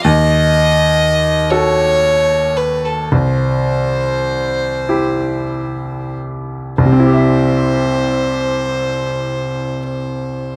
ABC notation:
X:1
M:6/8
L:1/16
Q:3/8=33
K:C
V:1 name="Violin"
^d6 ^c4 B A | c8- c2 z2 | c12 |]
V:2 name="Grand piano"
^D,,6 [^FA]6 | C,,6 [EG]6 | [C,,C,CEGe]12 |]